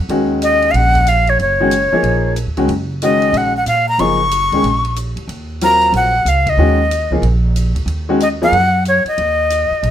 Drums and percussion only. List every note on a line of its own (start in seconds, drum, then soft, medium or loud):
0.09 ride medium
0.42 hi-hat pedal medium
0.42 ride medium
0.62 ride soft
0.74 ride medium
0.95 kick medium
0.95 ride soft
1.07 hi-hat pedal medium
1.07 ride medium
1.27 ride soft
1.39 ride medium
1.71 hi-hat pedal medium
1.71 ride medium
2.04 ride medium
2.36 hi-hat pedal medium
2.36 ride medium
2.57 ride soft
2.69 ride medium
3.02 hi-hat pedal medium
3.02 ride medium
3.22 ride soft
3.34 ride medium
3.66 hi-hat pedal medium
3.66 ride medium
3.99 ride medium
4.31 hi-hat pedal medium
4.31 ride medium
4.52 ride soft
4.64 ride medium
4.85 ride soft
4.96 hi-hat pedal medium
4.96 ride medium
5.17 ride soft
5.29 ride medium
5.61 hi-hat pedal medium
5.61 ride medium
5.81 ride soft
5.93 ride medium
6.26 hi-hat pedal medium
6.26 ride medium
6.47 kick medium
6.47 ride medium
6.91 hi-hat pedal medium
6.91 ride medium
7.23 ride medium
7.56 hi-hat pedal medium
7.56 ride medium
7.76 ride soft
7.88 ride medium
8.20 hi-hat pedal medium
8.20 ride medium
8.53 ride medium
8.85 hi-hat pedal medium
8.85 ride medium
9.06 ride soft
9.18 ride medium
9.50 hi-hat pedal medium
9.50 ride medium
9.83 ride medium